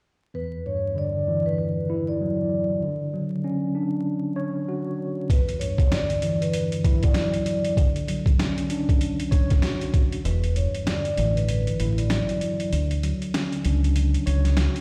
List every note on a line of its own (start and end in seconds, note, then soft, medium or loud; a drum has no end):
0.34 2.20 E2 medium
0.34 0.63 B4 medium
0.66 2.52 G2 medium
0.66 0.94 C#5 medium
0.96 2.81 D3 medium
0.96 1.44 D5 medium
1.28 2.82 E3 medium
1.46 1.57 B4 medium
1.58 2.05 B4 medium
1.90 2.82 E4 medium
2.08 2.78 D5 medium
2.21 2.83 F#3 medium
2.82 4.68 D3 medium
3.14 4.99 F#3 medium
3.44 5.30 C#4 medium
3.75 5.30 D4 medium
4.36 5.29 C#5 medium
4.68 5.30 F#4 medium
5.29 7.15 E2 medium
5.29 5.58 B4 medium
5.29 kick loud
5.29 closed hi-hat medium
5.49 closed hi-hat soft
5.59 7.46 G2 medium
5.59 5.88 C#5 medium
5.59 closed hi-hat medium
5.78 kick loud
5.78 closed hi-hat soft
5.91 7.76 D3 medium
5.91 6.38 D5 medium
5.91 snare loud
5.91 snare medium
5.91 closed hi-hat medium
6.10 closed hi-hat soft
6.22 7.77 E3 medium
6.22 closed hi-hat medium
6.41 6.51 B4 medium
6.41 closed hi-hat soft
6.52 6.99 B4 medium
6.52 closed hi-hat loud
6.72 closed hi-hat medium
6.84 7.77 E4 medium
6.84 kick medium
6.84 closed hi-hat medium
7.03 7.73 D5 medium
7.03 kick loud
7.03 closed hi-hat medium
7.14 7.78 F#3 medium
7.14 snare loud
7.14 snare medium
7.14 closed hi-hat medium
7.34 closed hi-hat soft
7.46 closed hi-hat medium
7.65 closed hi-hat medium
7.77 9.63 D3 medium
7.77 kick loud
7.77 closed hi-hat medium
7.96 closed hi-hat medium
8.08 9.94 F#3 medium
8.08 closed hi-hat medium
8.26 kick loud
8.26 closed hi-hat soft
8.39 10.25 C#4 medium
8.39 snare loud
8.39 snare medium
8.39 closed hi-hat medium
8.58 closed hi-hat medium
8.70 10.25 D4 medium
8.70 closed hi-hat medium
8.89 kick medium
8.89 closed hi-hat soft
9.01 closed hi-hat medium
9.20 closed hi-hat medium
9.31 10.24 C#5 medium
9.31 kick medium
9.31 closed hi-hat medium
9.50 kick loud
9.50 snare soft
9.50 closed hi-hat medium
9.62 10.25 F#4 medium
9.62 snare loud
9.62 snare medium
9.62 closed hi-hat medium
9.81 closed hi-hat soft
9.94 kick loud
9.94 closed hi-hat medium
10.12 closed hi-hat medium
10.24 10.65 E1 loud
10.24 12.10 E2 medium
10.24 10.53 B4 medium
10.24 closed hi-hat medium
10.44 closed hi-hat medium
10.56 12.41 G2 medium
10.56 10.84 C#5 medium
10.56 closed hi-hat medium
10.75 closed hi-hat soft
10.86 12.71 D3 medium
10.86 11.34 D5 medium
10.86 snare loud
10.86 snare medium
10.86 closed hi-hat medium
11.05 closed hi-hat medium
11.18 11.68 A1 loud
11.18 12.72 E3 medium
11.18 closed hi-hat medium
11.36 11.47 B4 medium
11.36 closed hi-hat soft
11.48 11.94 B4 medium
11.48 closed hi-hat loud
11.67 closed hi-hat medium
11.80 12.20 A1 medium
11.80 12.72 E4 medium
11.80 closed hi-hat medium
11.98 12.68 D5 medium
11.98 closed hi-hat medium
12.10 12.73 F#3 medium
12.10 snare loud
12.10 closed hi-hat medium
12.29 closed hi-hat soft
12.41 closed hi-hat medium
12.60 closed hi-hat medium
12.72 13.12 D2 medium
12.72 14.58 D3 medium
12.72 closed hi-hat medium
12.91 closed hi-hat soft
13.03 14.81 F#3 medium
13.03 closed hi-hat medium
13.22 closed hi-hat soft
13.34 14.81 C#4 medium
13.34 snare loud
13.34 snare medium
13.34 closed hi-hat medium
13.52 closed hi-hat medium
13.65 14.15 C#2 medium
13.65 14.81 D4 medium
13.65 closed hi-hat medium
13.84 closed hi-hat medium
13.96 closed hi-hat loud
14.14 closed hi-hat medium
14.26 14.67 C#2 medium
14.26 14.81 C#5 medium
14.26 closed hi-hat medium
14.45 snare soft
14.45 closed hi-hat medium
14.57 14.81 F#4 medium
14.57 snare loud
14.57 closed hi-hat medium
14.76 closed hi-hat medium